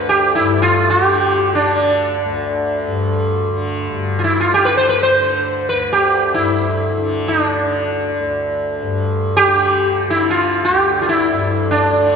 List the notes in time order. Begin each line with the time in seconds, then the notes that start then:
Already playing: D2 G2 D3 B4
0.09 G4
0.35 G2 E4
0.62 F4
0.90 G4
1.02 D3
1.55 D4
1.63 D3
2.25 D2
2.87 G2
3.50 D3
3.88 G2
4.19 F4
4.24 E4
4.40 F4
4.49 D3
4.54 G4
4.65 B4
4.77 C5
4.89 B4
5.03 C5
5.11 D3
5.69 B4
5.73 D2
5.93 G4
6.34 G2 E4
6.97 D3
7.28 D4
7.57 D3
8.19 D2
8.82 G2
9.37 G4
9.46 D3
10.08 D3 E4
10.30 F4
10.65 D2 G4
11.02 F4
11.09 E4
11.31 G2
11.71 D4
11.93 D3